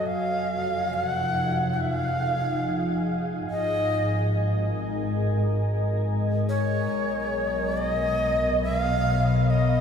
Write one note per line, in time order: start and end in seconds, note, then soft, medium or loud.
0.00 3.42 F1 medium
0.00 8.26 G#5 medium
0.04 3.47 F3 medium
0.04 0.93 F5 medium
0.52 4.84 D#4 medium
0.93 1.08 F5 medium
1.08 1.73 F#5 medium
1.56 6.89 G#4 medium
1.56 9.80 D#5 medium
1.73 1.82 F#5 medium
1.81 1.96 E5 medium
1.96 3.07 F5 medium
3.45 6.85 G#1 medium
3.45 6.89 G#3 medium
3.50 4.30 D#5 loud
3.72 9.80 A#4 medium
6.49 7.79 C#5 medium
6.91 9.80 B1 medium
6.91 9.80 B2 medium
7.71 9.80 B3 medium
7.77 8.62 D#5 medium
8.18 9.80 C#5 medium
8.63 8.78 E5 loud
8.78 9.51 F5 loud
9.50 9.80 D#5 medium